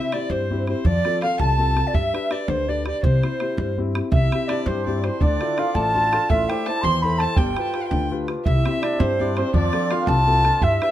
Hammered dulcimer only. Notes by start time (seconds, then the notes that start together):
4.12 E4
4.48 D4
4.66 C4
5.04 C4
5.21 D4
5.41 E4
5.57 F4
5.75 A4
6.12 F4
6.30 E4
6.51 G4
6.67 A4
6.83 C5
7.20 A4
7.37 G4
8.46 E4
8.59 E4
8.71 E4
8.82 D4
8.99 C4
9.21 D4
9.37 C4
9.54 D4
9.92 F4
10.02 B4
10.07 A4
10.44 F4
10.62 E4